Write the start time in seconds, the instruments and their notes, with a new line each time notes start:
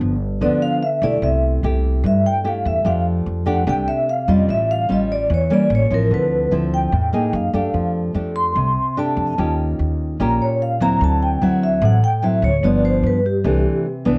Already playing: nylon-string guitar G2 F3 B3 D4
0.01 upright bass G1
0.41 upright bass D2, nylon-string guitar D3 F3 B3 D4, vibraphone D5
0.62 vibraphone F5
0.83 vibraphone E5
1.02 upright bass B1, nylon-string guitar A3 E4 G4, vibraphone D5
1.22 upright bass C2, nylon-string guitar C3, vibraphone E5
1.63 upright bass C2, nylon-string guitar A3 E4 G4
2.04 upright bass G2, nylon-string guitar G2, vibraphone E5
2.26 vibraphone G5
2.44 nylon-string guitar A3 E4 G4, vibraphone F5
2.66 upright bass E2, vibraphone E5
2.85 upright bass F2, nylon-string guitar F3 A3 D4 G4, vibraphone F5
3.26 upright bass F2
3.46 nylon-string guitar A3 D4 G4, vibraphone F#5
3.67 upright bass C2, nylon-string guitar C3 A3 D4 G4, vibraphone G5
3.88 vibraphone E5
4.10 vibraphone F5
4.28 upright bass F2, nylon-string guitar G3 C#4 F4, vibraphone D#5
4.48 upright bass A1, nylon-string guitar A2, vibraphone E5
4.71 vibraphone F5
4.89 upright bass A1, nylon-string guitar G3 C#4 F4, vibraphone D#5
5.12 vibraphone D5
5.30 upright bass E2, nylon-string guitar E3
5.34 vibraphone C#5
5.50 nylon-string guitar G3 A#3 C#4, vibraphone D5
5.70 upright bass A1
5.75 vibraphone C#5
5.90 upright bass A1, nylon-string guitar F3 C4 E4, vibraphone A#4
6.11 upright bass D2, nylon-string guitar D3, vibraphone B4
6.51 upright bass D2, nylon-string guitar F3 C4 E4
6.74 vibraphone G5
6.92 upright bass E2, nylon-string guitar A2
7.13 nylon-string guitar A#3 D#4 G#4
7.33 upright bass F#2, vibraphone F5
7.54 upright bass F#2, nylon-string guitar A3 D4 G4
7.74 upright bass F2, nylon-string guitar F3
8.15 upright bass F2, nylon-string guitar A3 D4 G4
8.36 vibraphone C6
8.55 upright bass C2, nylon-string guitar C3
8.97 nylon-string guitar A3 D4 G4, vibraphone A5
9.16 upright bass F2
9.38 upright bass D#2, nylon-string guitar D#3 C#4 F4 G4
9.79 upright bass D#2
10.19 upright bass A#1, nylon-string guitar A#2 C#4 F4 G4, vibraphone A#5
10.42 vibraphone C#5
10.62 vibraphone F5
10.80 upright bass D#2, nylon-string guitar F#3 C4 E4, vibraphone A#5
11.01 upright bass D2, nylon-string guitar D3, vibraphone A5
11.22 vibraphone G5
11.41 upright bass D2, nylon-string guitar F#3 C4 E4, vibraphone F#5
11.64 vibraphone E5
11.82 upright bass A1, nylon-string guitar A2, vibraphone F#5
12.04 vibraphone G5
12.22 nylon-string guitar F#3 C4 E4, vibraphone E5
12.42 upright bass D2, vibraphone C#5
12.63 upright bass G1, nylon-string guitar G2 F3 B3 D4, vibraphone D5
12.85 vibraphone C5
13.03 upright bass G2, vibraphone B4
13.26 vibraphone G4
13.44 upright bass C2, nylon-string guitar C3 E3 A3 D4
14.05 upright bass C2, nylon-string guitar E3 B3 D4